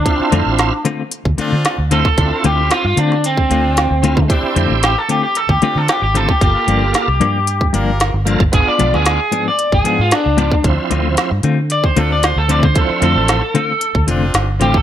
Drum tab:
HH |x-x-x-x-x-x-x-x-|x-x-x-x-x-x-x-x-|x-x-x-x-x-x-x-x-|x-x-x-x-x-x-x-x-|
SD |----o-------o--o|----o--o----o---|----o-------o---|----o-------o---|
BD |o--------o-----o|o--------o-----o|o--------o-----o|o--------o-----o|

HH |x-x-x-x-x-x-x-x-|x-x-x-x-x-x-x-x-|x-x-x-x-x-x-x-x-|
SD |---oo-------o---|----o-------o---|----o-------o---|
BD |o--------o-----o|o--------o-----o|o--------o-----o|